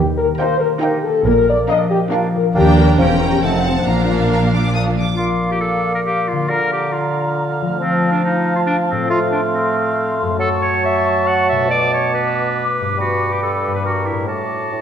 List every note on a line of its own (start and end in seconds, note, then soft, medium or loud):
0.00 0.31 D#2 medium
0.00 0.30 D#3 medium
0.00 1.28 D#3 medium
0.00 1.28 G3 soft
0.17 0.60 A#3 soft
0.17 0.27 A#4 medium
0.38 0.54 A#3 medium
0.38 0.55 D#4 medium
0.38 0.72 D#4 medium
0.38 1.28 D#4 medium
0.38 0.60 C5 loud
0.38 0.71 G5 medium
0.38 0.47 G5 medium
0.38 0.71 A#5 medium
0.59 1.04 A#3 soft
0.59 0.69 A#4 medium
0.80 0.98 A#3 medium
0.80 1.14 D#4 medium
0.80 0.99 D#4 medium
0.80 1.03 G4 medium
0.80 1.28 G4 medium
0.80 1.14 G5 medium
0.80 0.90 G5 medium
0.80 1.14 A#5 medium
1.02 1.69 A#3 medium
1.02 1.25 A4 medium
1.25 1.60 A#1 medium
1.25 2.58 A#2 medium
1.25 1.61 A#2 medium
1.25 1.47 A#4 loud
1.48 1.91 F3 soft
1.48 1.58 D5 medium
1.68 1.84 A#3 medium
1.68 3.45 A#3 soft
1.68 2.01 D4 medium
1.68 1.86 D4 medium
1.68 1.79 D#5 loud
1.68 1.77 F5 medium
1.68 2.02 F5 medium
1.68 2.02 A#5 medium
1.90 2.34 F3 soft
1.90 2.00 G4 loud
2.11 2.27 A#3 medium
2.11 2.44 D4 medium
2.11 2.28 D4 medium
2.11 2.76 D4 medium
2.11 2.22 F4 medium
2.11 2.20 F5 medium
2.11 2.45 F5 medium
2.11 2.45 A#5 medium
2.35 2.58 F3 soft
2.35 2.45 A#4 medium
2.55 2.96 D#2 medium
2.55 3.01 D#3 medium
2.55 2.71 A#3 medium
2.55 2.96 D4 medium
2.55 2.71 D4 medium
2.55 2.77 G4 loud
2.55 2.63 G5 medium
2.55 2.97 G5 medium
2.55 2.97 A#5 medium
2.77 3.01 D4 soft
2.77 3.20 G4 soft
2.77 2.87 A#4 medium
2.98 3.43 E1 medium
2.98 3.43 E2 medium
2.98 3.44 E3 medium
2.98 3.14 A#3 medium
2.98 3.42 C#4 medium
2.98 3.15 C#4 soft
2.98 3.20 C5 medium
2.98 3.07 G5 medium
2.98 3.42 G5 medium
2.98 3.42 A#5 medium
3.21 3.45 C#4 soft
3.21 3.45 G4 soft
3.21 3.32 A#4 medium
3.32 3.37 G4 medium
3.42 3.85 F1 medium
3.42 3.86 F2 medium
3.42 4.08 F3 medium
3.42 3.59 A3 soft
3.42 3.59 C4 soft
3.42 3.87 C4 medium
3.42 3.65 D#4 medium
3.42 3.51 F#5 soft
3.42 3.87 F#5 medium
3.42 3.87 A5 medium
3.65 3.88 C4 soft
3.65 3.75 C4 medium
3.65 3.89 F#4 soft
3.86 4.97 A#1 medium
3.86 4.96 A#2 medium
3.86 4.99 A#2 medium
3.86 4.73 A#3 medium
3.86 4.96 D4 medium
3.86 4.99 F5 medium
3.86 4.27 A#5 medium
4.09 4.52 F3 soft
4.30 5.04 A#3 soft
4.30 4.47 A#3 soft
4.30 4.46 D4 soft
4.30 4.38 F5 soft
4.30 4.41 A#5 medium
4.53 4.96 F3 soft
4.53 4.75 D6 medium
4.73 4.91 A#3 soft
4.73 4.89 D4 soft
4.73 5.08 D4 soft
4.73 4.84 F5 soft
4.73 4.83 D#6 medium
4.97 6.42 A#2 medium
4.97 7.60 F3 soft
4.97 5.19 D6 medium
5.05 6.36 A#3 soft
5.10 6.40 D4 soft
5.14 6.45 F4 soft
5.14 5.48 F4 medium
5.19 6.46 A#3 medium
5.19 6.46 D5 medium
5.19 6.47 F5 medium
5.51 5.56 G4 medium
5.61 5.94 A4 medium
5.95 6.00 A#4 medium
6.06 6.29 G4 medium
6.28 6.51 F4 medium
6.32 7.73 D3 medium
6.37 7.75 A#3 soft
6.37 7.77 D4 soft
6.46 7.77 D3 medium
6.46 7.74 F4 soft
6.46 6.71 A#4 medium
6.46 9.05 F5 medium
6.46 7.76 A#5 medium
6.72 6.94 G4 medium
6.93 7.58 F4 medium
7.62 10.31 F3 medium
7.66 8.95 A3 soft
7.71 8.99 C4 soft
7.75 9.04 F4 soft
7.75 9.06 A5 medium
7.80 9.07 F3 medium
7.80 8.10 C4 medium
8.12 8.22 D4 medium
8.24 8.55 D#4 medium
8.56 8.60 F4 medium
8.66 8.76 D4 medium
8.90 10.31 A2 medium
8.90 9.09 C4 medium
8.96 10.25 A3 medium
9.00 10.36 C4 soft
9.05 10.38 F4 medium
9.05 10.36 C6 medium
9.09 10.36 A3 medium
9.09 9.19 F4 loud
9.09 10.36 F5 medium
9.32 9.41 D4 medium
9.53 10.16 C4 medium
10.22 11.62 F#2 medium
10.26 11.54 A3 soft
10.30 11.66 C#4 medium
10.35 11.64 F#4 soft
10.39 11.70 F#3 medium
10.39 10.49 A4 medium
10.39 12.81 A5 medium
10.39 11.65 C#6 medium
10.62 10.82 C#5 medium
10.85 11.28 E5 medium
11.27 11.48 F#5 medium
11.49 12.91 B2 medium
11.49 11.69 E5 medium
11.55 12.93 A3 soft
11.60 12.89 D4 soft
11.65 12.81 B2 medium
11.65 13.85 F#4 soft
11.69 11.91 D5 loud
11.69 14.06 D6 medium
11.94 12.13 C#5 medium
12.14 12.97 B4 medium
12.81 13.66 G2 soft
12.85 13.80 B3 soft
12.90 13.76 D4 soft
12.94 14.29 G2 medium
12.94 13.80 G4 soft
12.94 13.86 B4 medium
13.00 13.34 F#4 medium
13.33 13.42 G4 medium
13.43 13.74 A4 medium
13.68 14.22 G2 soft
13.72 14.24 A#3 soft
13.72 13.85 B4 medium
13.77 14.19 D4 soft
13.81 14.29 G4 soft
13.81 14.27 A#4 medium
13.86 14.08 F#4 medium
14.06 14.27 E4 medium
14.11 14.81 A2 soft
14.15 14.81 A3 soft
14.20 14.81 D4 soft
14.24 14.68 A2 soft
14.24 14.81 F#4 soft
14.24 14.81 F#4 medium
14.24 14.81 A5 soft
14.24 14.81 D6 soft
14.72 14.81 A2 medium